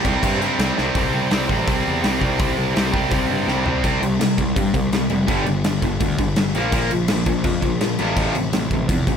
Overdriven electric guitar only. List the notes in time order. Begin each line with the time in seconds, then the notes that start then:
0.05 C3 G3 C4
0.23 C3 G3 C4
0.42 C3 G3 C4
0.58 C3 G3 C4
0.76 C3 G3 C4
0.96 C3 G3 C4
1.31 C3 G3 C4
1.48 C3 G3 C4
1.67 C3 G3 C4
2.02 C3 G3 C4
2.20 C3 G3 C4
2.39 C3 G3 C4
2.75 C3 G3 C4
2.92 C3 G3 C4
3.10 C3 G3 C4
3.46 C3 G3 C4
3.65 C3 G3 C4
3.84 C3 G3 C4
4.01 C3 G3
4.20 C3 G3
4.38 C3 G3
4.56 C3 G3
4.73 C3 G3
4.93 C3 G3
5.10 C3 G3
5.27 G2 D3 G3
5.46 G2 D3
5.64 G2 D3
5.83 G2 D3
6.00 G2 D3
6.19 G2 D3
6.38 G2 D3
6.55 A#2 F3 A#3
6.73 A#2 F3 A#3
6.90 A#2 F3
7.08 A#2 F3
7.27 A#2 F3
7.44 A#2 F3
7.61 A#2 F3
7.80 A#2 F3
7.99 F2 C3 F3
8.17 F2 C3 F3
8.36 F2 C3
8.54 F2 C3
8.73 F2 C3
8.91 F2 C3
9.08 F2 C3